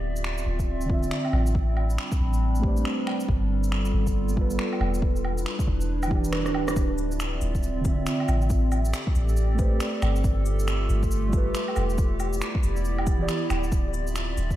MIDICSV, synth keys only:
0, 0, Header, 1, 2, 480
1, 0, Start_track
1, 0, Tempo, 434783
1, 1708, Time_signature, 4, 2, 24, 8
1, 16075, End_track
2, 0, Start_track
2, 0, Title_t, "Synth keys"
2, 0, Program_c, 0, 88
2, 944, Note_on_c, 0, 50, 78
2, 974, Note_on_c, 0, 60, 71
2, 1004, Note_on_c, 0, 65, 70
2, 1033, Note_on_c, 0, 76, 88
2, 1675, Note_off_c, 0, 50, 0
2, 1690, Note_off_c, 0, 60, 0
2, 1705, Note_off_c, 0, 65, 0
2, 1719, Note_off_c, 0, 76, 0
2, 2868, Note_on_c, 0, 57, 67
2, 2891, Note_on_c, 0, 67, 63
2, 2911, Note_on_c, 0, 71, 60
2, 2935, Note_on_c, 0, 72, 64
2, 2957, Note_on_c, 0, 74, 77
2, 3596, Note_off_c, 0, 57, 0
2, 3608, Note_off_c, 0, 67, 0
2, 3618, Note_off_c, 0, 71, 0
2, 3630, Note_off_c, 0, 72, 0
2, 3641, Note_off_c, 0, 74, 0
2, 4780, Note_on_c, 0, 55, 76
2, 4810, Note_on_c, 0, 65, 75
2, 4841, Note_on_c, 0, 69, 71
2, 4868, Note_on_c, 0, 71, 87
2, 5513, Note_off_c, 0, 55, 0
2, 5528, Note_off_c, 0, 65, 0
2, 5543, Note_off_c, 0, 69, 0
2, 5557, Note_off_c, 0, 71, 0
2, 6704, Note_on_c, 0, 52, 69
2, 6734, Note_on_c, 0, 64, 62
2, 6761, Note_on_c, 0, 67, 67
2, 6790, Note_on_c, 0, 74, 76
2, 7435, Note_off_c, 0, 52, 0
2, 7449, Note_off_c, 0, 64, 0
2, 7463, Note_off_c, 0, 67, 0
2, 7478, Note_off_c, 0, 74, 0
2, 8624, Note_on_c, 0, 50, 82
2, 8656, Note_on_c, 0, 60, 73
2, 8684, Note_on_c, 0, 65, 73
2, 8714, Note_on_c, 0, 76, 89
2, 9355, Note_off_c, 0, 50, 0
2, 9371, Note_off_c, 0, 60, 0
2, 9385, Note_off_c, 0, 65, 0
2, 9400, Note_off_c, 0, 76, 0
2, 10539, Note_on_c, 0, 57, 68
2, 10562, Note_on_c, 0, 67, 67
2, 10584, Note_on_c, 0, 71, 64
2, 10606, Note_on_c, 0, 72, 63
2, 10629, Note_on_c, 0, 74, 80
2, 11272, Note_off_c, 0, 57, 0
2, 11283, Note_off_c, 0, 67, 0
2, 11295, Note_off_c, 0, 71, 0
2, 11306, Note_off_c, 0, 72, 0
2, 11317, Note_off_c, 0, 74, 0
2, 12463, Note_on_c, 0, 55, 83
2, 12493, Note_on_c, 0, 65, 78
2, 12523, Note_on_c, 0, 69, 74
2, 12555, Note_on_c, 0, 71, 88
2, 13194, Note_off_c, 0, 55, 0
2, 13209, Note_off_c, 0, 65, 0
2, 13224, Note_off_c, 0, 69, 0
2, 13240, Note_off_c, 0, 71, 0
2, 14556, Note_on_c, 0, 52, 90
2, 14569, Note_on_c, 0, 64, 82
2, 14584, Note_on_c, 0, 67, 82
2, 14600, Note_on_c, 0, 74, 99
2, 14727, Note_off_c, 0, 52, 0
2, 14734, Note_off_c, 0, 64, 0
2, 14742, Note_off_c, 0, 67, 0
2, 14749, Note_off_c, 0, 74, 0
2, 16075, End_track
0, 0, End_of_file